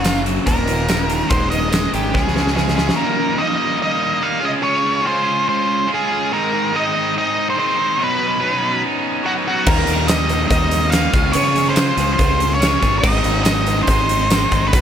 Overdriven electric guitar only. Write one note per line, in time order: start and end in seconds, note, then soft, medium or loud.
0.04 0.24 F#2 medium
0.04 0.25 C#3 medium
0.04 0.25 F#3 loud
0.25 0.45 F#2 medium
0.25 0.45 C#3 medium
0.25 0.46 F#3 medium
0.45 0.64 D#2 loud
0.45 0.65 A#2 medium
0.45 0.65 D#3 loud
0.65 0.87 D#2 medium
0.65 0.87 A#2 medium
0.65 0.89 D#3 loud
0.88 1.06 D#2 medium
0.88 1.06 A#2 loud
0.88 1.08 D#3 loud
1.07 1.28 D#2 medium
1.07 1.27 A#2 medium
1.07 1.28 D#3 medium
1.28 1.49 G#2 medium
1.28 1.49 D#3 loud
1.28 1.50 G#3 loud
1.50 1.68 G#2 medium
1.50 1.70 D#3 medium
1.50 1.70 G#3 medium
1.70 1.91 G#2 medium
1.70 1.92 D#3 loud
1.70 1.92 G#3 medium
1.93 2.13 G#2 medium
1.93 2.13 D#3 medium
1.93 2.13 G#3 medium
2.13 2.32 C#3 medium
2.13 2.32 G#3 loud
2.13 2.33 C#4 loud
2.33 2.52 C#3 medium
2.33 2.53 G#3 medium
2.33 2.54 C#4 medium
2.53 2.75 C#3 medium
2.53 2.76 G#3 medium
2.53 2.76 C#4 medium
2.76 2.96 C#3 medium
2.76 2.97 G#3 medium
2.76 2.97 C#4 medium
2.96 3.37 D#2 medium
2.96 3.38 A#2 loud
2.96 3.20 D#3 loud
2.96 3.19 G3 loud
2.96 3.18 A#3 loud
2.96 3.17 D#4 loud
3.18 3.39 D#3 medium
3.18 3.39 G3 medium
3.18 3.40 A#3 medium
3.18 3.40 D#4 medium
3.39 3.81 D#2 medium
3.39 3.81 A#2 medium
3.39 3.61 D#3 medium
3.39 3.60 G3 loud
3.39 3.58 A#3 medium
3.39 3.56 D#4 loud
3.58 4.22 G3 medium
3.58 4.22 A#3 medium
3.58 4.23 D#4 medium
3.62 4.20 D#3 medium
4.21 4.42 D#3 medium
4.21 4.42 G3 medium
4.21 4.41 A#3 medium
4.21 4.41 D#4 loud
4.41 4.61 C#3 medium
4.41 4.62 G#3 medium
4.41 4.62 C#4 medium
4.41 4.62 F4 medium
4.41 4.64 G#4 loud
4.62 5.01 C#3 loud
4.62 5.03 G#3 loud
4.62 4.85 C#4 loud
4.62 4.84 F4 loud
4.62 4.83 G#4 loud
4.83 5.03 C#4 medium
4.83 5.04 F4 medium
4.83 5.06 G#4 medium
5.02 5.46 C#3 medium
5.02 5.87 G#3 loud
5.02 5.25 C#4 medium
5.02 5.24 F4 loud
5.02 5.22 G#4 loud
5.23 5.87 C#4 medium
5.23 5.87 F4 medium
5.23 5.90 G#4 medium
5.87 6.29 G#3 medium
5.87 6.11 C#4 medium
5.87 6.09 F4 medium
5.87 6.07 G#4 loud
6.08 6.31 C#4 medium
6.08 6.31 F4 medium
6.08 6.30 G#4 medium
6.32 6.71 G#2 loud
6.32 6.73 D#3 loud
6.32 6.54 G#3 loud
6.32 6.54 C4 loud
6.32 6.52 D#4 loud
6.53 6.74 G#3 medium
6.53 6.74 C4 medium
6.53 6.76 D#4 medium
6.73 7.15 G#2 medium
6.73 7.16 D#3 loud
6.73 6.96 G#3 loud
6.73 6.94 C4 loud
6.73 6.93 D#4 loud
6.93 7.55 G#3 medium
6.93 7.56 C4 medium
6.93 7.58 D#4 medium
7.55 7.97 D#3 medium
7.55 7.79 G#3 medium
7.55 7.77 C4 loud
7.55 7.76 D#4 medium
7.76 7.99 G#3 medium
7.76 7.98 C4 medium
7.76 8.00 D#4 medium
7.98 8.39 B2 loud
7.98 8.39 F#3 loud
7.98 8.22 B3 loud
7.98 8.21 C#4 loud
7.98 8.19 D#4 loud
8.19 8.40 B3 medium
8.19 8.41 C#4 medium
8.19 8.42 D#4 medium
8.40 8.83 B2 loud
8.40 8.83 F#3 medium
8.40 8.64 B3 medium
8.40 8.62 C#4 loud
8.40 8.60 D#4 loud
8.61 9.25 B3 medium
8.61 9.25 C#4 medium
8.61 9.25 D#4 medium
9.23 9.65 F#3 medium
9.23 9.48 B3 medium
9.23 9.46 C#4 medium
9.23 9.44 D#4 loud
9.46 9.67 B3 medium
9.46 9.66 C#4 medium
9.46 9.66 D#4 medium
9.65 10.06 D#2 loud
9.65 10.08 A#2 loud
9.65 9.87 D#3 loud
9.65 9.86 G3 loud
9.65 9.85 A#3 loud
9.65 9.85 D#4 medium
9.86 10.08 D#3 medium
9.86 10.09 G3 medium
9.86 10.09 A#3 medium
9.86 10.10 D#4 medium
10.07 10.50 D#2 medium
10.07 10.51 A#2 medium
10.07 10.31 D#3 loud
10.07 10.29 G3 loud
10.07 10.29 A#3 medium
10.07 10.27 D#4 loud
10.28 10.92 D#3 medium
10.28 10.93 G3 medium
10.28 10.94 A#3 medium
10.28 10.95 D#4 medium
10.93 11.13 D#3 medium
10.93 11.13 G3 medium
10.93 11.14 A#3 medium
10.93 11.14 D#4 medium
11.14 11.33 C#3 medium
11.14 11.34 G#3 medium
11.14 11.35 C#4 medium
11.14 11.36 F4 medium
11.14 11.37 G#4 medium
11.34 11.75 C#3 loud
11.34 11.76 G#3 loud
11.34 11.57 C#4 loud
11.34 11.56 F4 loud
11.34 11.55 G#4 loud
11.56 11.76 C#4 medium
11.56 11.77 F4 medium
11.56 11.78 G#4 medium
11.76 12.19 C#3 medium
11.76 12.60 G#3 loud
11.76 11.98 C#4 loud
11.76 11.96 F4 loud
11.76 11.95 G#4 loud
11.96 12.59 C#4 medium
11.96 12.61 F4 medium
11.96 12.62 G#4 medium
12.60 13.02 G#3 medium
12.60 12.83 C#4 medium
12.60 12.82 F4 medium
12.60 12.81 G#4 loud
12.82 13.03 C#4 medium
12.82 13.03 F4 medium
12.82 13.02 G#4 medium
13.03 13.41 G#2 loud
13.03 13.42 D#3 loud
13.03 13.24 G#3 loud
13.03 13.23 C4 loud
13.03 13.22 D#4 loud
13.23 13.43 G#3 medium
13.23 13.44 C4 medium
13.23 13.46 D#4 medium
13.43 13.87 G#2 medium
13.43 13.87 D#3 loud
13.43 13.68 G#3 loud
13.43 13.66 C4 loud
13.43 13.65 D#4 loud
13.66 14.31 G#3 medium
13.66 14.32 C4 medium
13.66 14.33 D#4 medium
14.31 14.72 D#3 medium
14.31 14.53 G#3 medium
14.31 14.52 C4 medium
14.31 14.50 D#4 medium
14.51 14.72 G#3 medium
14.51 14.73 C4 medium
14.51 14.73 D#4 medium
14.71 14.81 B2 medium
14.71 14.81 F#3 loud
14.71 14.81 B3 loud
14.71 14.81 C#4 loud
14.71 14.81 D#4 loud